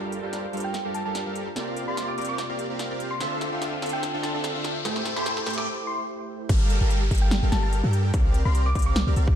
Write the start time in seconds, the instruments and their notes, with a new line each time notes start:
Already playing: tine electric piano G3 D4 F4 A#4, supersaw synth G3 G4 A4 A#4 F5, riser
0.12 closed hi-hat
0.21 tine electric piano G3 D4 F4, supersaw synth G3 G4 A4 A#4 F5
0.26 tine electric piano C5
0.33 snare, closed hi-hat
0.53 supersaw synth G3 G4 A4 A#4 F5, closed hi-hat
0.57 closed hi-hat
0.60 closed hi-hat
0.64 synth pluck G5
0.74 snare, closed hi-hat
0.85 supersaw synth G3 G4 A4 A#4 F5
0.94 synth pluck A5, closed hi-hat
1.05 supersaw synth G3 G4 A4 A#4 F5, synth pluck A5
1.15 snare, closed hi-hat
1.26 supersaw synth G3 G4 A4 A#4 F5
1.36 closed hi-hat
1.55 tine electric piano C3 A#3 F4 D5, supersaw synth C4 G4 A#4 D5 F5, snare, closed hi-hat
1.77 closed hi-hat
1.86 tine electric piano C3 A#3 F4 D5, supersaw synth C4 G4 A#4 D5 F5, synth pluck C6
1.97 snare, closed hi-hat
2.08 synth pluck D6
2.18 supersaw synth C4 G4 A#4 D5 F5, synth pluck D6, closed hi-hat
2.21 closed hi-hat
2.25 closed hi-hat
2.29 synth pluck D6
2.38 snare, closed hi-hat
2.49 supersaw synth C4 G4 A#4 D5 F5
2.59 closed hi-hat
2.70 supersaw synth C4 G4 A#4 D5 F5
2.79 snare, closed hi-hat
2.90 supersaw synth C4 G4 A#4 D5 F5
3.00 closed hi-hat
3.11 synth pluck C6
3.20 tine electric piano D3 C4 F4 E5, supersaw synth D4 A4 C5 E5 F5, snare, closed hi-hat
3.41 snare, closed hi-hat
3.50 tine electric piano D3 C4 F4 F5, supersaw synth D4 A4 C5 E5 F5
3.62 snare, closed hi-hat
3.82 supersaw synth D4 A4 C5 E5 F5, snare, closed hi-hat
3.86 closed hi-hat
3.89 synth pluck G5, closed hi-hat
4.03 snare, closed hi-hat
4.14 supersaw synth D4 A4 C5 E5 F5
4.23 synth pluck A5, snare, closed hi-hat
4.34 supersaw synth D4 A4 C5 E5 F5, synth pluck A5
4.44 snare, closed hi-hat
4.55 supersaw synth D4 A4 C5 E5 F5
4.64 snare, closed hi-hat
4.84 tine electric piano A3 E4 G4 C5, supersaw synth A3 A4 C5 E5 G5, snare, closed hi-hat
4.96 snare
5.06 snare, closed hi-hat
5.14 tine electric piano A3 E4 G4, supersaw synth A3 A4 C5 E5 G5, synth pluck C6, snare
5.19 tine electric piano C5
5.26 snare, closed hi-hat
5.37 snare
5.46 supersaw synth A3 A4 C5 E5 G5, snare, closed hi-hat
5.50 closed hi-hat
5.53 closed hi-hat
5.58 synth pluck D6, snare
5.87 synth pluck C6
6.49 808-style bass G1, supersaw synth G3 G4 A4 A#4 F5, kick, closed hi-hat, crash, downlifter
6.70 closed hi-hat
6.81 808-style bass G1, supersaw synth G3 G4 A4 A#4 F5
6.91 closed hi-hat
7.11 808-style bass G1, supersaw synth G3 G4 A4 A#4 F5, kick, closed hi-hat
7.15 closed hi-hat
7.18 synth pluck G5, closed hi-hat
7.31 snare, closed hi-hat
7.43 808-style bass G1, supersaw synth G3 G4 A4 A#4 F5
7.52 808-style bass G1, supersaw synth G3 G4 A4 A#4 F5, synth pluck A5, snare, closed hi-hat
7.63 synth pluck A5
7.73 closed hi-hat
7.83 808-style bass G2, supersaw synth G3 G4 A4 A#4 G5
7.93 closed hi-hat
8.13 808-style bass C2, supersaw synth C4 G4 D5 F5, kick, closed hi-hat
8.34 closed hi-hat
8.45 808-style bass C2, supersaw synth C4 G4 A#4 D5 F5, synth pluck C6
8.55 closed hi-hat
8.66 synth pluck D6
8.75 808-style bass C2, supersaw synth C4 G4 A#4 D5 F5, synth pluck D6, kick, closed hi-hat
8.79 closed hi-hat
8.82 closed hi-hat
8.86 synth pluck D6
8.96 snare, closed hi-hat
9.07 808-style bass C2, supersaw synth C4 G4 A#4 D5 F5
9.16 808-style bass C2, supersaw synth C4 G4 A#4 D5 F5, closed hi-hat
9.28 kick